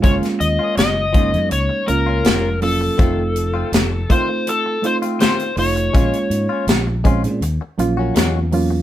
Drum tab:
HH |xxx-x-xxx-x-x-o-|x-x-x-x-x-xxxxox|xxx-x-xxx-x-x-o-|
SD |-o--o-------o---|----o-------o---|----o-------o---|
BD |o-----o---------|o-----o---------|o-----o---------|